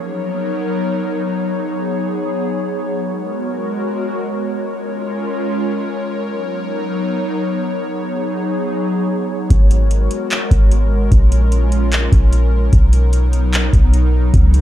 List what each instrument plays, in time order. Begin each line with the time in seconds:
Already playing: analog synth pad F#3 B3 D#4 A#4 C#5
1.45 analog synth pad B3 G#4
3.06 analog synth pad G#3 F#4 A#4
4.67 analog synth pad G#3 C#4 F4 A#4 C#5
6.28 analog synth pad F#3 B3 D#4
7.89 analog synth pad F#3 D#4 G#4
9.50 808-style bass G#1, analog synth pad G#3 F#4 A#4, kick, closed hi-hat
9.71 closed hi-hat
9.91 closed hi-hat
10.11 closed hi-hat
10.31 clap, closed hi-hat
10.51 808-style bass G#1, kick, closed hi-hat
10.72 closed hi-hat
11.12 808-style bass A#1, analog synth pad C#4 F4, kick, closed hi-hat
11.32 closed hi-hat
11.52 closed hi-hat
11.72 closed hi-hat
11.92 clap, closed hi-hat
12.12 808-style bass A#1, kick, closed hi-hat
12.33 closed hi-hat
12.73 808-style bass B1, analog synth pad F#3 B3 D#4, kick, closed hi-hat
12.93 closed hi-hat
13.13 closed hi-hat
13.33 closed hi-hat
13.53 clap, closed hi-hat
13.73 808-style bass B1, kick, closed hi-hat
13.94 closed hi-hat
14.34 808-style bass C#2, analog synth pad G#4 C#5, kick, closed hi-hat
14.54 closed hi-hat